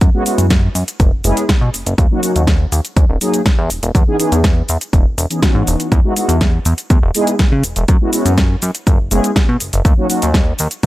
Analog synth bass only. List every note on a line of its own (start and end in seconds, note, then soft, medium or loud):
0.01 0.10 F#2 loud
0.38 0.69 F#2 medium
0.75 0.84 F#2 medium
1.00 1.12 F#1 loud
1.12 1.22 F#1 soft
1.25 1.33 F#1 medium
1.61 1.70 B2 medium
1.74 1.84 F#1 soft
1.86 1.95 F#1 medium
1.98 2.07 D#2 loud
2.36 2.66 D#2 medium
2.72 2.81 D#2 medium
2.96 3.05 D#2 medium
3.09 3.18 D#1 loud
3.58 3.70 E2 medium
3.70 3.81 E1 soft
3.83 3.91 E1 medium
3.95 4.04 E2 loud
4.32 4.63 E2 medium
4.69 4.78 E2 medium
4.93 5.05 E1 loud
5.06 5.16 E1 soft
5.18 5.27 E1 medium
5.55 5.63 G#2 medium
5.67 5.76 E1 medium
5.92 6.00 E2 medium
6.29 6.59 E2 medium
6.65 6.74 E2 medium
6.90 6.99 E2 medium
7.03 7.11 E1 loud
7.52 7.63 C#3 medium
7.64 7.74 E1 soft
7.77 7.85 E1 medium
7.88 7.97 F#2 loud
8.25 8.56 F#2 medium
8.62 8.71 F#2 medium
8.87 8.99 F#1 loud
9.00 9.09 F#1 soft
9.11 9.20 F#1 medium
9.49 9.57 B2 medium
9.61 9.71 F#1 soft
9.74 9.82 F#1 medium
9.85 9.94 D#2 loud
10.23 10.53 D#2 medium
10.60 10.68 D#2 medium